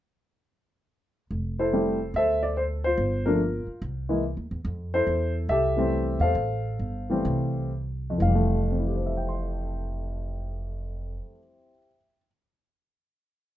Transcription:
1.31 upright bass F1
1.59 grand piano E4 A4 C5
1.73 grand piano G3 A3 C4 E4
2.14 upright bass D2, grand piano A4 C5 E5
2.43 grand piano D5
2.57 grand piano C5
2.84 grand piano F4 C5
2.98 upright bass G1
3.26 grand piano F3 A3 A#3 D4 F4 A#4
3.67 muted upright bass stroke
3.82 upright bass C2
4.09 grand piano E3 G#3 A#3 E4
4.37 upright bass D#2
4.51 upright bass E2
4.65 upright bass F2
4.94 grand piano E4 A4 C5
5.07 upright bass E2
5.49 upright bass C2, grand piano G4 A4 E5
5.76 grand piano E3 G3 A3 C4
6.20 upright bass E2, grand piano A4 C5 F5
6.35 upright bass A1
6.79 upright bass G1
7.10 grand piano E3 G3 A3 C4
7.25 upright bass C2
8.10 grand piano F2
8.18 upright bass F1, grand piano E3 F5
8.27 grand piano G3
8.35 grand piano A3
8.71 grand piano C4
8.80 grand piano E4
8.87 grand piano G4
8.96 grand piano C5
9.06 grand piano E5
9.17 grand piano G5
9.29 grand piano C6

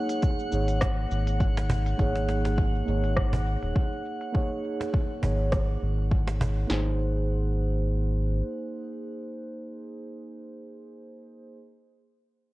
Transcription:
Already playing: synth keys A#3 D#4 G#4 C#5, synth texture F#5
0.09 open hi-hat, cabasa
0.22 kick, open hi-hat, cabasa
0.39 cabasa
0.50 analog synth bass G#1, synth keys A#3 D#4 G#4, cabasa
0.54 synth keys C#5
0.68 open hi-hat, cabasa
0.81 kick, cross-stick, cajon slap, open hi-hat, cabasa
1.11 analog synth bass G#1, cabasa
1.27 open hi-hat, cabasa
1.40 kick, open hi-hat, cabasa
1.57 cajon slap, cabasa
1.70 cajon bass, cabasa
1.86 open hi-hat, cabasa
1.97 analog synth bass G#1, synth keys A#3 D#4 G#4, kick, open hi-hat, cabasa
2.01 synth keys C#5
2.16 cajon slap
2.29 cajon slap, cabasa
2.45 cajon slap, open hi-hat, cabasa
2.58 kick, open hi-hat, cabasa
2.75 cabasa
2.86 analog synth bass G#1, synth keys A#3 D#4 G#4 C#5, cabasa
3.04 open hi-hat, cabasa
3.16 kick, cross-stick, open hi-hat, cabasa
3.33 cajon bass
3.46 cabasa
3.63 analog synth bass D#1, open hi-hat, cabasa
3.76 kick, open hi-hat
3.92 cabasa
4.05 cabasa
4.21 open hi-hat, cabasa
4.32 synth keys A#3 D#4 G#4 C#5, kick, open hi-hat
4.64 cabasa
4.80 cajon slap, open hi-hat
4.93 kick, open hi-hat
5.10 cabasa
5.21 analog synth bass G#1, synth keys A#3 D#4 G#4, cajon bass
5.25 synth keys C#5
5.39 open hi-hat
5.52 kick, cross-stick, cajon slap, open hi-hat
5.82 analog synth bass G#1, cabasa
5.98 open hi-hat, cabasa
6.11 kick, open hi-hat
6.27 cajon slap
6.41 cajon bass
6.57 open hi-hat
6.67 analog synth bass G#1, synth keys A#3 D#4 G#4, snare
6.73 synth keys C5

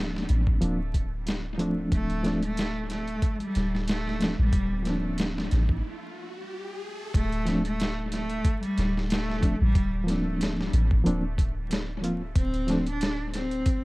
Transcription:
Already playing: 808-style bass D1, reed electric piano F3 A#3 C4 D4
0.16 snare
0.29 808-style bass A1, closed hi-hat
0.47 kick
0.61 808-style bass D1, reed electric piano F3 A#3 C4 D4, closed hi-hat
0.94 kick, closed hi-hat
1.27 snare, closed hi-hat
1.58 reed electric piano F3 A3 C4 D4, closed hi-hat
1.92 808-style bass D1, cello A3, kick, closed hi-hat, riser
2.10 closed hi-hat
2.23 reed electric piano F3 A3 C4 D4, snare, closed hi-hat
2.42 cello A3, closed hi-hat
2.57 snare, closed hi-hat
2.90 cello A3, snare, closed hi-hat
3.08 closed hi-hat
3.22 kick, closed hi-hat
3.40 cello G3, closed hi-hat
3.55 808-style bass D1, snare, closed hi-hat
3.75 snare
3.88 cello A3, snare, closed hi-hat
4.07 snare
4.19 reed electric piano F3 A3 C4 D4, snare, closed hi-hat
4.39 808-style bass A1, cello G3
4.53 808-style bass D1, kick, closed hi-hat
4.83 reed electric piano F3 A#3, closed hi-hat
4.87 reed electric piano C4 D4, snare
5.18 snare, closed hi-hat
5.38 snare
5.51 808-style bass A1, snare, closed hi-hat
5.69 kick
7.14 808-style bass D1, cello A3, kick, closed hi-hat
7.32 closed hi-hat
7.45 reed electric piano F3 A3 C4 D4, snare, closed hi-hat
7.65 cello A3, closed hi-hat
7.80 snare, closed hi-hat
8.12 cello A3, snare, closed hi-hat
8.30 closed hi-hat
8.45 kick, closed hi-hat
8.63 cello G3, closed hi-hat
8.78 808-style bass D1, snare, closed hi-hat
8.97 snare
9.10 cello A3, snare, closed hi-hat
9.30 snare
9.41 reed electric piano F3 A3 C4 D4, kick, closed hi-hat
9.61 808-style bass A1, cello G3
9.75 808-style bass D1, kick, closed hi-hat
10.04 reed electric piano F3 A#3
10.08 reed electric piano C4 D4, snare, closed hi-hat
10.41 snare, closed hi-hat
10.61 snare
10.73 808-style bass A1, closed hi-hat
10.91 kick
11.04 808-style bass D1, reed electric piano F3 A#3 C4 D4, closed hi-hat
11.38 kick, closed hi-hat
11.71 snare, closed hi-hat
12.01 reed electric piano F3 A#3 C4 F4, closed hi-hat
12.36 808-style bass D1, cello C4, kick, closed hi-hat
12.54 closed hi-hat
12.67 reed electric piano F3 A3 C4 D4, snare, closed hi-hat
12.87 cello D4, closed hi-hat
13.01 snare, closed hi-hat
13.34 cello C4, snare, closed hi-hat
13.51 closed hi-hat
13.66 kick, closed hi-hat

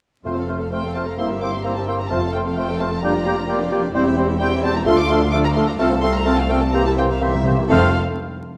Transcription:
0.25 double bass section F1, timpani F2, cello section F2, bassoon A3, viola section A3 F4, clarinet C4, french horn section C4 F4, violin section C5, oboe C5, flute section F6
0.36 viola section C4 A4, violin section A4 F5
0.48 viola section A3 F4, bassoon A3, clarinet C4, violin section C5, oboe C5, flute section F6
0.60 viola section C4 A4, violin section A4 F5
0.71 bassoon A3, viola section A3 F4, clarinet C4, violin section C5 G5, oboe C5, flute section F6
0.83 viola section C4 A4, violin section A4 F5
0.95 bassoon A3, viola section A3 F4, clarinet C4, violin section C5 A5, oboe C5, flute section F6
1.06 viola section C4 A4, violin section A4 F5 A#5
1.17 double bass section G1, cello section G2, viola section A#3 E4, bassoon A#3, french horn section A#3 E4, clarinet C4, violin section G4 C5 C6, oboe C5, flute section E6
1.29 viola section C4 G4, violin section A#4 E5
1.41 bassoon A#3, viola section A#3 E4, clarinet C4, violin section G4 C5 D6, oboe C5, flute section E6
1.53 viola section C4 G4, violin section A#4 E5 C6
1.64 bassoon A#3, viola section A#3 E4, clarinet C4, violin section G4 C5 A#5, oboe C5, flute section E6
1.76 viola section C4 G4, violin section A#4 E5 A5
1.87 viola section A#3 E4, bassoon A#3, clarinet C4, violin section G4 C5 G5, oboe C5, flute section E6
1.99 viola section C4 G4, violin section A#4 E5 A#5
2.09 double bass section F1, cello section F2, timpani F2, bassoon A3, french horn section A3 F4, viola section A3 F4, clarinet C4, violin section C5 A5, oboe C5, flute section F6
2.22 viola section C4 A4, violin section A4 F5
2.32 bassoon A3, viola section A3 F4, clarinet C4, oboe C5, violin section C5 G5, flute section F6
2.46 viola section C4 A4, violin section A4 F5
2.56 bassoon A3, viola section A3 F4, clarinet C4, violin section C5 G5, oboe C5, flute section F6
2.69 viola section C4 A4, violin section A4 F5
2.78 bassoon A3, viola section A3 F4, clarinet C4, violin section C5 A5, oboe C5, flute section F6
2.92 viola section C4 A4, violin section A4 F5
3.01 bassoon G3, french horn section G3 D4, clarinet A#3, viola section F4 G4, violin section F4 A#4 A#5, oboe D5, flute section G6
3.14 viola section D4 F4, violin section G4 D5
3.25 bassoon G3, clarinet A#3, viola section F4 G4, violin section F4 A#4, oboe D5, flute section G6
3.36 viola section D4 F4, violin section G4 D5
3.47 bassoon G3, clarinet A#3, violin section F4 A#4, viola section F4 G4, oboe D5, flute section G6
3.59 viola section D4 F4, violin section G4 D5
3.71 bassoon G3, clarinet A#3, viola section F4 G4, violin section F4 A#4, oboe D5, flute section G6
3.82 viola section D4 F4, violin section G4 D5
3.93 double bass section E1, cello section E2, bassoon G3, french horn section G3 C4, clarinet C4, violin section E4 C5, viola section E4 G4, oboe C5, flute section G6
4.04 viola section C4 E4, violin section G4 E5
4.16 bassoon G3, clarinet C4, viola section E4 G4, violin section E4 C5, oboe C5, flute section G6
4.28 viola section C4 E4, violin section G4 E5
4.39 bassoon G3, clarinet C4, viola section E4 G4, violin section E4 C5 G5, oboe C5, flute section G6
4.51 viola section C4 E4, violin section G4 E5
4.63 bassoon G3, clarinet C4, viola section E4 G4, violin section E4 C5 A5, oboe C5, flute section G6
4.74 viola section C4 E4, violin section G4 E5 A#5
4.85 cello section D2, double bass section D2, viola section F3 F4, french horn section A3 F4, bassoon A3, clarinet D4, violin section F4 D5 C6, oboe A4, flute section F6
4.97 viola section A3 D4, violin section A4 F5 D6
5.09 viola section F3 F4, bassoon A3, clarinet D4, violin section F4 D5 C6, oboe A4, flute section F6
5.21 viola section A3 D4, violin section A4 F5
5.31 viola section F3 F4, bassoon A3, clarinet D4, violin section F4 D5 D6, oboe A4, flute section F6
5.44 viola section A3 D4, violin section A4 F5 A#5
5.54 viola section F3 F4, bassoon A3, clarinet D4, violin section F4 D5 C6, oboe A4, flute section F6
5.67 viola section A3 D4, violin section A4 F5 A#5
5.79 cello section C2, double bass section C2, bassoon A3, french horn section A3 F4, viola section C4 F4, clarinet C4, oboe A4, violin section C5 F5 A5, flute section F6
5.90 viola section A3 C4, violin section A4 A5
6.01 bassoon A3, viola section C4 F4, clarinet C4, oboe A4, violin section C5 F5 C6, flute section F6
6.14 viola section A3 C4, violin section A4 A5 A#5
6.25 bassoon A3, viola section C4 F4, clarinet C4, oboe A4, violin section C5 F5 A5, flute section F6
6.37 viola section A3 C4, violin section A4 F5 A5
6.49 bassoon A3, clarinet C4, viola section C4 F4, oboe A4, violin section C5 F5 G5, flute section F6
6.60 viola section A3 C4, violin section A4 A5
6.72 viola section E3 G4, bassoon A#3, french horn section A#3 G4, clarinet C4, violin section C5 A#5, oboe C5, flute section G6
6.81 timpani C3, violin section E5
6.85 timpani C3, viola section G3 E4, violin section A#4 A5
6.97 timpani C3, viola section E3 G4, bassoon A#3, clarinet C4, violin section C5 G5, oboe C5, flute section G6
7.04 timpani C3
7.09 timpani C3, viola section G3 E4, violin section A#4 E5 F5
7.20 timpani C3, viola section E3 G4, bassoon A#3, clarinet C4, violin section C5 E5, oboe C5, flute section G6
7.28 timpani C3
7.33 timpani C3, viola section G3 E4, violin section A#4 E5
7.43 timpani C3, viola section E3 G4, bassoon A#3, clarinet C4, violin section C5, flute section G6
7.47 timpani C3, oboe C5
7.58 timpani C3, viola section G3 E4, violin section A#4 E5
7.69 double bass section F1, cello section F2, timpani F2, bassoon A3, viola section A3 F4, french horn section C4 A4, clarinet C4, violin section A4 C5 F5, oboe C5, flute section F6

